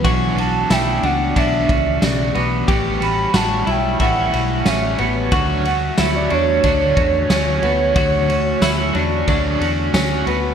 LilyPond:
<<
  \new Staff \with { instrumentName = "Soft synth lead" } { \time 4/4 \key d \major \tempo 4 = 91 r8 a''8 g''8 fis''8 e''4 d''8 r8 | r8 b''8 a''8 g''8 fis''4 e''8 r8 | r8 fis''8 e''16 d''16 cis''2~ cis''8~ | cis''2. r4 | }
  \new Staff \with { instrumentName = "Clean electric guitar" } { \time 4/4 \key d \major fis'4 e'8 d'8 d'4 cis8 b8 | g'4 fis'8 e'8 e'4 cis'8 b8 | fis'4 e'8 d'8 d'4 cis'8 b8 | fis'4 e'8 d'8 d'4 cis'8 b8 | }
  \new Staff \with { instrumentName = "Clean electric guitar" } { \time 4/4 \key d \major <b, a cis' d' fis'>8 <cis' d' fis'>8 <a cis' d'>8 <cis' d' fis'>8 <b, a cis' d' fis'>8 <cis' d' fis'>8 <a fis'>8 <cis' d' fis'>8 | <a, e g a cis' fis'>8 <g a cis' fis'>8 <g a cis' fis'>8 <g a cis'>8 <a, e g a cis' fis'>8 <g a cis' fis'>8 <g a cis' fis'>8 <g a cis' fis'>8 | <d fis a cis' fis'>8 <a cis' fis'>8 <fis a cis' fis'>8 <a cis' fis'>8 <d fis a cis' fis'>8 <a cis' fis'>8 <fis a cis' fis'>8 <a cis' fis'>8 | <d fis a cis' fis'>8 <a cis' fis'>8 <fis a cis' fis'>8 <a cis' fis'>8 <d fis a cis' fis'>8 <a cis' fis'>8 <fis a cis' fis'>8 <a cis' fis'>8 | }
  \new Staff \with { instrumentName = "Ambient pad" } { \time 4/4 \key d \major << { <e b>1 | <g cis''>1 | <d fis'>1~ | <d fis'>1 | } \\ { a1 | a1~ | a1~ | a1 | } >> }
  \new Staff \with { instrumentName = "Fingered electric bass" } { \clef bass \time 4/4 \key d \major b,,4 b,,8 cis,8 b,,8 cis,8 b,,8 b,,8 | a,,4 a,,8 b,,8 a,,8 b,,8 a,,8 a,,8 | d,4 d,8 e,8 d,8 e,8 d,8 d,8 | d,4 d,8 e,8 d,8 e,8 d,8 d,8 | }
  \new DrumStaff \with { instrumentName = "Drums" } \drummode { \time 4/4 <bd cymr>8 cymr8 <cymr sn tamb>8 cymr8 <bd cymr>8 <bd cymr>8 <cymr sn tamb>8 cymr8 | <bd cymr>8 cymr8 <cymr sn tamb>8 cymr8 <bd cymr>8 cymr8 <cymr sn tamb>8 cymr8 | <bd cymr>8 cymr8 <cymr sn tamb>8 cymr8 <bd cymr>8 <bd cymr>8 <cymr sn tamb>8 cymr8 | <bd cymr>8 cymr8 <cymr sn tamb>8 cymr8 <bd cymr>8 cymr8 <cymr sn tamb>8 cymr8 | }
>>